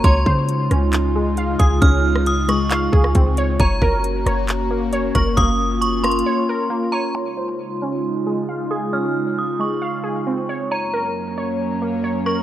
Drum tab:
HH |x-----------x-----x-----x-----------x-----x-----|x-----------x-----x-----x-----------x-----x-----|x-----------x-----x-----x-----------x-----x-----|x-----------x-----x-x-x-------------------------|
CP |------------------------x-----------------------|------------------------x-----------------------|------------------------x-----------------------|------------------------------------------------|
SD |------------------r-----------------------------|---------r--------r--------------r--------------|------------------r-----------------------------|------------------r-----------------------------|
BD |o-----o-----------------------------------o-----|o-----------------------------o-----o-----------|o-----o-----------------------------------o-----|o-----------------------------------------------|

HH |------------------------------------------------|------------------------------------------------|------------------------------------------------|
CP |------------------------------------------------|------------------------------------------------|------------------------------------------------|
SD |------------------------------------------------|------------------------------------------------|------------------------------------------------|
BD |------------------------------------------------|------------------------------------------------|------------------------------------------------|